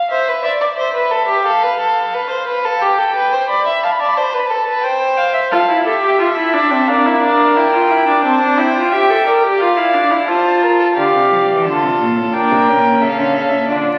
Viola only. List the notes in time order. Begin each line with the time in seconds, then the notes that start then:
5.52 F4
5.69 E4
5.86 A4
6.02 G4
6.19 F4
6.36 E4
6.53 D4
6.71 C4
6.88 D4
7.06 E4
7.22 D4
7.57 E4
7.74 F4
7.90 E4
8.08 D4
8.24 C4
8.41 D4
8.58 E4
8.76 F4
8.92 G4
9.10 A4
9.27 A#4
9.43 G4
9.60 F4
9.77 E4
9.94 D4
10.11 E4
10.28 F4
10.97 G4
11.65 F4
12.34 D4
12.68 C#4
13.69 D4